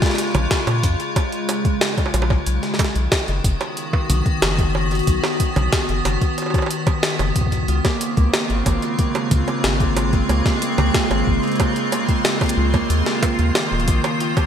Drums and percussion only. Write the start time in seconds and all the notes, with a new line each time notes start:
0.02 kick, snare, closed hi-hat
0.06 snare
0.10 snare
0.14 snare
0.18 snare, closed hi-hat
0.22 snare
0.27 snare
0.31 snare
0.35 closed hi-hat, mid tom, high bongo
0.51 kick, snare, closed hi-hat
0.67 closed hi-hat, high bongo
0.83 kick, closed hi-hat
1.00 closed hi-hat
1.16 kick, closed hi-hat, high bongo
1.32 closed hi-hat
1.49 closed hi-hat, high bongo
1.65 kick, closed hi-hat
1.81 snare, closed hi-hat
1.98 kick, closed hi-hat, high bongo
2.06 high bongo
2.14 closed hi-hat, high bongo
2.22 high bongo
2.30 kick, high bongo
2.46 closed hi-hat
2.63 snare, closed hi-hat
2.74 snare
2.79 kick, closed hi-hat, high bongo
2.84 snare
2.95 closed hi-hat
3.12 kick, snare, closed hi-hat, high bongo
3.28 closed hi-hat
3.44 kick, closed hi-hat
3.61 closed hi-hat, high bongo
3.77 closed hi-hat
3.93 kick, high bongo
4.10 closed hi-hat, mid tom
4.26 kick, closed hi-hat
4.42 snare, closed hi-hat, high bongo
4.58 kick, closed hi-hat
4.75 high bongo
4.91 closed hi-hat
4.95 closed hi-hat
4.99 closed hi-hat
5.03 closed hi-hat
5.07 kick, closed hi-hat
5.24 snare, high bongo
5.40 kick, closed hi-hat
5.56 closed hi-hat, mid tom, high bongo
5.73 kick, snare, closed hi-hat
5.89 closed hi-hat
6.05 closed hi-hat, high bongo
6.21 kick, closed hi-hat
6.38 closed hi-hat, high bongo
6.42 high bongo
6.46 high bongo
6.50 kick, high bongo
6.54 closed hi-hat, high bongo
6.58 high bongo
6.62 high bongo
6.66 high bongo
6.71 closed hi-hat
6.87 kick, closed hi-hat, high bongo
7.03 snare, closed hi-hat
7.19 closed hi-hat, high bongo
7.36 kick, closed hi-hat
7.41 kick
7.47 kick
7.52 kick, closed hi-hat
7.57 kick
7.63 kick
7.68 closed hi-hat
7.85 kick, snare, closed hi-hat, high bongo
8.01 closed hi-hat
8.17 kick, closed hi-hat
8.34 snare, closed hi-hat, high bongo
8.50 closed hi-hat
8.66 kick, closed hi-hat, high bongo
8.82 closed hi-hat
8.99 kick, closed hi-hat
9.15 closed hi-hat, high bongo
9.31 kick, closed hi-hat, mid tom
9.48 closed hi-hat, high bongo
9.64 snare, closed hi-hat
9.80 kick, closed hi-hat
9.97 closed hi-hat, high bongo
10.13 kick, closed hi-hat
10.29 closed hi-hat, high bongo
10.45 kick, snare, closed hi-hat
10.62 closed hi-hat
10.78 closed hi-hat, mid tom, high bongo
10.94 kick, snare, closed hi-hat
11.11 closed hi-hat, high bongo
11.27 kick
11.43 closed hi-hat
11.47 closed hi-hat
11.52 closed hi-hat
11.56 closed hi-hat
11.60 kick, closed hi-hat, high bongo
11.76 closed hi-hat
11.92 closed hi-hat, high bongo
12.09 kick, closed hi-hat
12.25 snare, closed hi-hat
12.41 kick, closed hi-hat, high bongo
12.44 closed hi-hat
12.46 closed hi-hat
12.48 closed hi-hat
12.50 closed hi-hat
12.53 closed hi-hat
12.74 kick, closed hi-hat, high bongo
12.90 closed hi-hat
13.06 snare
13.23 kick, closed hi-hat, high bongo
13.39 closed hi-hat
13.55 snare, closed hi-hat, high bongo
13.80 closed hi-hat
13.88 kick, closed hi-hat
14.04 closed hi-hat, high bongo
14.20 closed hi-hat
14.37 kick, closed hi-hat, high bongo